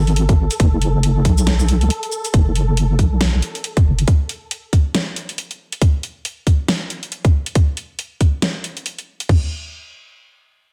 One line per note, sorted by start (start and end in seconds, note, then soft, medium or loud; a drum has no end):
0.00 0.49 G#1 loud
0.00 2.35 A4 medium
0.07 closed hi-hat soft
0.16 closed hi-hat medium
0.29 kick loud
0.29 closed hi-hat soft
0.51 closed hi-hat medium
0.51 shaker medium
0.60 1.27 F#1 loud
0.60 kick loud
0.60 closed hi-hat medium
0.82 closed hi-hat medium
1.03 closed hi-hat medium
1.25 1.83 B1 loud
1.25 kick medium
1.25 closed hi-hat medium
1.38 shaker medium
1.47 snare loud
1.47 closed hi-hat medium
1.59 shaker medium
1.68 closed hi-hat medium
1.81 1.90 C#2 loud
1.81 closed hi-hat soft
1.90 closed hi-hat medium
2.03 closed hi-hat soft
2.12 shaker medium
2.25 closed hi-hat medium
2.25 shaker medium
2.34 3.00 F#1 loud
2.34 kick loud
2.34 closed hi-hat medium
2.56 closed hi-hat medium
2.77 closed hi-hat medium
2.99 3.41 B1 loud
2.99 kick medium
2.99 closed hi-hat medium
3.21 snare loud
3.21 closed hi-hat medium
3.42 closed hi-hat medium
3.55 closed hi-hat soft
3.64 closed hi-hat medium
3.77 kick loud
3.77 closed hi-hat soft
3.86 4.06 F#1 medium
3.99 closed hi-hat medium
4.08 kick loud
4.08 closed hi-hat medium
4.29 closed hi-hat medium
4.51 closed hi-hat medium
4.73 kick medium
4.73 closed hi-hat medium
4.95 snare loud
4.95 closed hi-hat medium
5.16 closed hi-hat medium
5.29 closed hi-hat soft
5.38 closed hi-hat medium
5.51 closed hi-hat soft
5.72 closed hi-hat medium
5.82 kick loud
5.82 closed hi-hat medium
6.03 closed hi-hat medium
6.25 closed hi-hat medium
6.47 kick medium
6.47 closed hi-hat medium
6.68 snare loud
6.68 closed hi-hat medium
6.90 closed hi-hat medium
7.03 closed hi-hat soft
7.12 closed hi-hat medium
7.25 kick loud
7.25 closed hi-hat soft
7.46 closed hi-hat medium
7.55 kick loud
7.55 closed hi-hat medium
7.77 closed hi-hat medium
7.99 closed hi-hat medium
8.21 kick medium
8.21 closed hi-hat soft
8.42 snare loud
8.42 closed hi-hat medium
8.64 closed hi-hat soft
8.77 closed hi-hat soft
8.86 closed hi-hat medium
8.99 closed hi-hat soft
9.20 closed hi-hat medium
9.29 kick medium
9.29 floor tom medium
9.29 crash medium